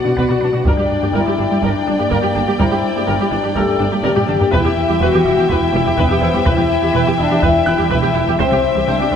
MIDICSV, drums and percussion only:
0, 0, Header, 1, 2, 480
1, 0, Start_track
1, 0, Tempo, 483871
1, 655, Time_signature, 4, 2, 24, 8
1, 9086, End_track
2, 0, Start_track
2, 0, Title_t, "Taiko and cinematic ensemble drums"
2, 174, Note_on_c, 9, 41, 64
2, 273, Note_off_c, 9, 41, 0
2, 651, Note_on_c, 9, 41, 88
2, 750, Note_off_c, 9, 41, 0
2, 1611, Note_on_c, 9, 41, 64
2, 1710, Note_off_c, 9, 41, 0
2, 2098, Note_on_c, 9, 41, 76
2, 2198, Note_off_c, 9, 41, 0
2, 2578, Note_on_c, 9, 41, 90
2, 2677, Note_off_c, 9, 41, 0
2, 3538, Note_on_c, 9, 41, 61
2, 3637, Note_off_c, 9, 41, 0
2, 4019, Note_on_c, 9, 48, 78
2, 4118, Note_off_c, 9, 48, 0
2, 4134, Note_on_c, 9, 45, 78
2, 4234, Note_off_c, 9, 45, 0
2, 4250, Note_on_c, 9, 47, 73
2, 4349, Note_off_c, 9, 47, 0
2, 4376, Note_on_c, 9, 43, 100
2, 4475, Note_off_c, 9, 43, 0
2, 4495, Note_on_c, 9, 41, 105
2, 4594, Note_off_c, 9, 41, 0
2, 5456, Note_on_c, 9, 41, 77
2, 5555, Note_off_c, 9, 41, 0
2, 5929, Note_on_c, 9, 41, 78
2, 6028, Note_off_c, 9, 41, 0
2, 6411, Note_on_c, 9, 41, 98
2, 6511, Note_off_c, 9, 41, 0
2, 7371, Note_on_c, 9, 41, 74
2, 7470, Note_off_c, 9, 41, 0
2, 7851, Note_on_c, 9, 41, 77
2, 7950, Note_off_c, 9, 41, 0
2, 8330, Note_on_c, 9, 41, 98
2, 8429, Note_off_c, 9, 41, 0
2, 9086, End_track
0, 0, End_of_file